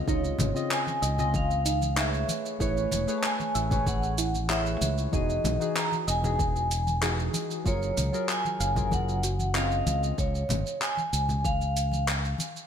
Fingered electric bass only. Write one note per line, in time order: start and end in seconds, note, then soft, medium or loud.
0.07 0.32 C#2 medium
0.39 0.52 G#1 loud
1.02 2.23 C#2 medium
2.60 2.85 A1 loud
2.92 3.04 E1 medium
3.55 4.76 A1 medium
4.81 5.06 C#2 loud
5.13 5.38 E1 loud
5.44 5.57 B1 medium
6.08 7.28 E1 medium
7.66 7.90 F#1 loud
7.97 8.10 C#2 medium
8.60 9.81 F#1 medium
9.86 10.11 C#2 loud
10.18 10.43 C#2 loud
10.50 10.62 G#1 medium
11.13 12.34 C#2 medium